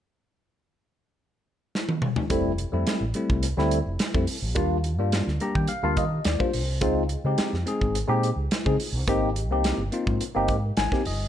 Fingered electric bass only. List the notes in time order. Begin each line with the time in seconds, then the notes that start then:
2.30 F1
2.73 F2
2.86 muted fingered electric bass stroke
3.01 A1
3.29 C2
3.57 D2
3.86 F1
4.14 F2
4.28 muted fingered electric bass stroke
4.42 A#1
4.56 D#2
4.99 G2
5.27 D2
5.55 D#3
5.68 muted fingered electric bass stroke
5.83 D2
5.97 D#3
6.25 D#2
6.40 muted fingered electric bass stroke
6.54 C2
6.81 C#2
7.24 C#3
7.38 muted fingered electric bass stroke
7.53 F2
7.81 G#1
8.08 A#2
8.36 C#2
8.66 C#3
8.78 muted fingered electric bass stroke
8.92 C2
9.07 G#1
9.49 C2
9.78 G1
10.06 G#2
10.21 muted fingered electric bass stroke
10.36 G1
10.49 G#2
10.77 G#1
10.92 muted fingered electric bass stroke
11.06 G1